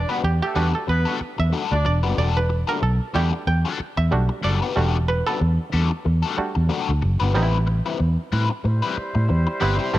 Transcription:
0.09 G3 B3 D4 F#4 B4
0.23 E2 G4, muted overdriven electric guitar stroke
0.42 A3 G4 A4
0.55 E2 G3 A3 B3 D4 F#4 A4 B4
0.73 A4, muted overdriven electric guitar stroke
0.87 E2 B3 B4, muted overdriven electric guitar stroke
1.05 G3 D4 F#4 A4
1.20 muted overdriven electric guitar stroke, muted fingered electric bass stroke
1.38 E2 E5, muted overdriven electric guitar stroke
1.52 G3 D4 F#4 A4
1.71 D2 D4 D5
1.85 E1 D5, muted overdriven electric guitar stroke
2.03 F#1 G3 D4 F#4 B4
2.17 E1 G3 D4 F#4 A4 D5
2.37 B4
2.49 muted overdriven electric guitar stroke
2.67 G3 D4 F#4 A4 A#4
2.82 B1 A4, muted overdriven electric guitar stroke
3.14 E2 G3 A3 D4 E4 F#4 G4 A4
3.33 muted overdriven electric guitar stroke
3.47 E2 G5, muted overdriven electric guitar stroke
3.65 G3 D4 F#4 A4
3.80 muted overdriven electric guitar stroke, muted fingered electric bass stroke
3.97 E2 E5, muted overdriven electric guitar stroke
4.11 B1 G3 A3 D4 F#4, muted overdriven electric guitar stroke
4.29 muted overdriven electric guitar stroke
4.43 F#1 G3 D4 F#4 A4 D5
4.62 G3 D4 F#4 B4
4.76 E1 G3 A3 D4 F#4 A4
5.08 B4, muted overdriven electric guitar stroke
5.27 G3 D4 F#4 A4 B4
5.41 E2, muted overdriven electric guitar stroke
5.72 E2 G3 D4 F#4 A4
5.91 muted overdriven electric guitar stroke
6.05 E2, muted overdriven electric guitar stroke
6.23 G3 D4 F#4 A4
6.37 G3 A3 D4 F#4, muted overdriven electric guitar stroke, muted fingered electric bass stroke
6.55 E2, muted overdriven electric guitar stroke
6.69 G3 D4 F#4 A4
6.89 D2
7.02 F#1, muted overdriven electric guitar stroke
7.20 G1 G3 D4 F#4 B4
7.34 A1 G3 B3 C4 D#4 E4 B4
7.43 E4
7.67 muted overdriven electric guitar stroke
7.86 G3 C4 E4 B4
7.99 E2, muted overdriven electric guitar stroke
8.32 A2 G3 C4 E4 B4
8.50 muted overdriven electric guitar stroke
8.64 A2 G3 E4 C5, muted overdriven electric guitar stroke
8.82 G3 C4 E4 B4
8.97 muted overdriven electric guitar stroke, muted fingered electric bass stroke
9.15 A2, muted overdriven electric guitar stroke
9.29 E2, muted overdriven electric guitar stroke
9.47 muted overdriven electric guitar stroke
9.60 G1 G3 B3 C4 E4 B4
9.79 G3 C4 E4 C5
9.93 A1 G3 A3 C4 E4 B4

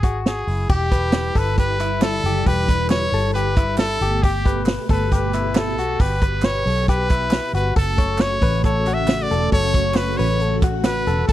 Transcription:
Already playing: G#1 G#4
0.03 F#4, kick, closed hi-hat
0.26 G#4, snare, closed hi-hat
0.47 F#1 E4, open hi-hat
0.69 E1 D3 G3 E4 G4, kick, crash
0.91 B4, kick, hi-hat pedal, open hi-hat
1.12 snare, clap, hi-hat pedal, open hi-hat
1.35 G1 A4 B4, kick, hi-hat pedal, open hi-hat
1.57 G4 B4, kick, snare, hi-hat pedal, open hi-hat
1.80 E4, clap, hi-hat pedal, open hi-hat
2.01 A4, snare, clap, hi-hat pedal, open hi-hat
2.24 F#1 G4, hi-hat pedal, open hi-hat
2.46 E1 G4 B4, kick, hi-hat pedal, open hi-hat
2.69 B4, kick, hi-hat pedal, open hi-hat
2.89 C#5, snare, clap, hi-hat pedal, open hi-hat
3.12 G1 A4, hi-hat pedal, open hi-hat
3.34 G4 B4, snare, hi-hat pedal, open hi-hat
3.56 E4, kick, clap, hi-hat pedal, open hi-hat
3.77 A4, snare, clap, hi-hat pedal, open hi-hat
4.01 G1 B2 A3 G4, hi-hat pedal, open hi-hat
4.23 G4, kick, hi-hat pedal, open hi-hat
4.46 B4, kick, hi-hat pedal, open hi-hat
4.66 snare, clap, hi-hat pedal, open hi-hat
4.89 G1 A4 B4, kick, hi-hat pedal, open hi-hat
5.12 G4 B4, kick, snare, hi-hat pedal, open hi-hat
5.34 E4, clap, hi-hat pedal, open hi-hat
5.55 A4, snare, clap, hi-hat pedal, open hi-hat
5.78 B1 B3 F#4, hi-hat pedal, open hi-hat
6.00 G1 G4 B4, kick, hi-hat pedal, open hi-hat
6.21 B4, kick, hi-hat pedal, open hi-hat
6.42 C#5, snare, clap, hi-hat pedal, open hi-hat
6.66 B1 A4, hi-hat pedal, open hi-hat
6.88 G4 B4, kick, snare, hi-hat pedal, open hi-hat
7.10 E4, kick, clap, hi-hat pedal, open hi-hat
7.31 snare, clap, hi-hat pedal, open hi-hat
7.53 G1 F#4 B4, hi-hat pedal, open hi-hat
7.76 F#1 C#3 A3 F#4 A4, kick, hi-hat pedal, open hi-hat
7.98 C#5, kick, hi-hat pedal, open hi-hat
8.18 C#5, snare, clap, hi-hat pedal, open hi-hat
8.41 A1 B4, kick, hi-hat pedal, open hi-hat
8.63 A4 C#5, kick, snare, hi-hat pedal, open hi-hat
8.86 F#4, clap, hi-hat pedal, open hi-hat
8.94 E5
9.07 snare, clap, hi-hat pedal, open hi-hat
9.22 D5
9.31 E1 A4, hi-hat pedal, open hi-hat
9.52 F#1 A4 C#5, kick, hi-hat pedal, open hi-hat
9.74 C#5, kick, hi-hat pedal, open hi-hat
9.94 B4, snare, clap, hi-hat pedal, open hi-hat
10.17 A1 B4 C#5, hi-hat pedal, open hi-hat
10.40 A4, hi-hat pedal, open hi-hat
10.62 F#4, kick, clap, hi-hat pedal, open hi-hat
10.84 B4, snare, clap, hi-hat pedal, open hi-hat
11.06 E1 A4, hi-hat pedal, open hi-hat
11.28 F#1 A3 A4, kick, hi-hat pedal, open hi-hat

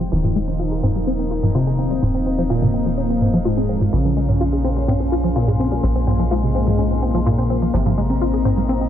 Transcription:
Already playing: F2 F3 F4 C5 G5
0.00 F3, closed hi-hat
0.12 D#1 D#3 F3 A#3 D#4 A#4 D#5, closed hi-hat
0.24 F3, closed hi-hat, mid tom
0.36 G#3
0.48 C#4 A#4, closed hi-hat
0.58 F4 F5, closed hi-hat
0.72 G#4, closed hi-hat
0.83 C4, mid tom
0.95 G3, closed hi-hat
1.07 C4, closed hi-hat
1.19 C4, closed hi-hat
1.31 F4
1.43 F3, closed hi-hat, mid tom
1.55 C3 C4 F4, closed hi-hat
1.67 G#4
1.79 C4
1.91 G3, closed hi-hat
2.02 D#1 C4 C5, closed hi-hat, mid tom
2.14 C4, closed hi-hat
2.26 C4
2.38 F3, closed hi-hat
2.50 A#2 A#3 F4, closed hi-hat
2.62 C3, closed hi-hat, mid tom
2.74 C4
2.86 F3, closed hi-hat
2.98 C#4, closed hi-hat
3.10 C4, closed hi-hat
3.21 C4, mid tom
3.34 F3, closed hi-hat
3.45 G#2 G#3 F4, closed hi-hat
3.57 C4, closed hi-hat
3.69 C4
3.81 F3, closed hi-hat, mid tom
3.93 A#1 C#3 F3 A#3 C#4 F4 C#5 G#5, closed hi-hat
4.05 F3, closed hi-hat
4.17 G#3
4.29 C#4, closed hi-hat, mid tom
4.40 F4 C6, closed hi-hat
4.53 G#4, closed hi-hat
4.64 C4
4.76 G3, closed hi-hat
4.88 C4, closed hi-hat, mid tom
5.00 C4, closed hi-hat
5.12 F4
5.24 F3, closed hi-hat
5.36 A#2 A#3 F4, closed hi-hat
5.48 G#4, closed hi-hat, mid tom
5.60 C4
5.72 G3, closed hi-hat
5.83 A#1 C4 D#5, closed hi-hat
5.95 C4, closed hi-hat
6.07 C4, mid tom
6.19 F3, closed hi-hat
6.31 G#2 G#3 F4, closed hi-hat
6.43 C3, closed hi-hat
6.55 C4
6.67 F3, closed hi-hat, mid tom
6.79 C#4, closed hi-hat
6.91 C4, closed hi-hat
7.02 C4
7.14 F3, closed hi-hat
7.26 A#2 A#3 F4, closed hi-hat, mid tom
7.38 C4, closed hi-hat
7.50 C4
7.62 F3, closed hi-hat
7.74 G#1 C3 F3 A#3 C4 D#4 C5, closed hi-hat
7.84 F3 A#5, closed hi-hat, mid tom
7.98 G#3
8.10 C4 D#5, closed hi-hat
8.21 F4, closed hi-hat
8.34 G#4, closed hi-hat
8.45 C4, mid tom
8.57 G3, closed hi-hat
8.69 C4, closed hi-hat
8.81 C4, closed hi-hat

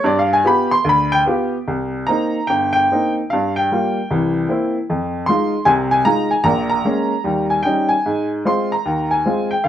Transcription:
0.04 G2 D5
0.19 F5
0.33 G#5
0.44 B3 F4 G4 B5
0.71 C6
0.85 D2
0.89 B5
1.12 G5
1.26 B3 F4 G4
1.68 C2
2.07 A#3 C4 D#4 A#5
2.47 G1 G5
2.73 G5
2.92 A#3 C4 D#4
3.30 G2 F5
3.56 G5
3.71 G3 A#3 F4
4.11 C2 E3
4.49 A#3 C4 E4
4.90 F2
5.26 G#3 D#4 F4 C6
5.65 C2 C3 G#5
5.91 G#5
6.05 G#3 D#4 F4 A#5
6.31 G#5
6.44 A#1 A#2 A#5
6.70 A#5
6.85 G#3 A#3 C#4
7.24 D#2 G3
7.50 G#5
7.63 G3 C#4 D#4 G5
7.89 G#5
8.06 G#2
8.45 G#3 C4 F4 C6
8.72 A#5
8.86 D#2
9.11 G#5
9.26 G#3 C4 F4
9.51 G5
9.64 D2 F5

